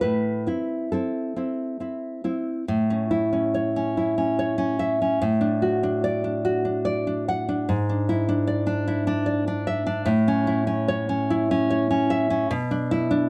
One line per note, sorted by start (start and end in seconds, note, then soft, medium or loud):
0.01 0.47 A2 soft
0.01 0.88 B4 medium
0.47 0.92 C4 soft
0.47 0.93 E4 soft
0.92 1.35 C4 soft
0.92 1.36 E4 soft
0.92 2.20 A4 soft
1.36 1.79 C4 soft
1.36 1.79 E4 soft
1.80 2.23 C4 soft
1.80 2.23 E4 soft
2.24 2.64 C4 soft
2.24 2.64 E4 soft
2.68 5.19 A2 medium
2.90 3.31 C#4 soft
3.11 3.96 E4 medium
3.33 3.75 C#4 medium
3.54 4.38 C#5 medium
3.76 4.17 C#4 soft
3.97 4.79 E4 soft
4.18 4.57 C#4 medium
4.39 5.23 C#5 medium
4.58 5.00 C#4 medium
4.79 5.22 E5 medium
5.02 5.23 C#4 soft
5.22 7.65 A2 medium
5.41 5.82 D4 medium
5.62 6.44 F#4 medium
5.83 6.23 D4 medium
6.04 6.84 D5 medium
6.24 6.64 D4 soft
6.45 7.69 F#4 medium
6.65 7.06 D4 medium
6.85 7.28 D5 medium
7.07 7.47 D4 soft
7.28 7.69 F#5 medium
7.49 7.69 D4 medium
7.69 10.04 G#2 medium
7.89 8.27 D4 medium
8.09 8.86 E4 medium
8.29 8.65 D4 medium
8.47 9.25 D5 medium
8.67 9.06 D4 medium
8.88 9.67 E4 medium
9.07 9.46 D4 medium
9.26 10.08 D5 medium
9.47 9.85 D4 medium
9.67 10.08 E5 medium
9.86 10.08 D4 medium
10.06 12.45 A2 medium
10.28 10.66 C#4 medium
10.47 11.29 E4 medium
10.67 11.08 C#4 medium
10.88 11.69 C#5 medium
11.09 11.50 C#4 medium
11.30 12.51 E4 medium
11.51 11.89 C#4 medium
11.70 12.50 C#5 medium
11.91 12.29 C#4 medium
12.10 12.50 E5 medium
12.30 12.51 C#4 medium
12.51 13.29 B2 loud
12.71 13.09 D4 medium
12.91 13.29 E4 medium
13.11 13.29 D4 medium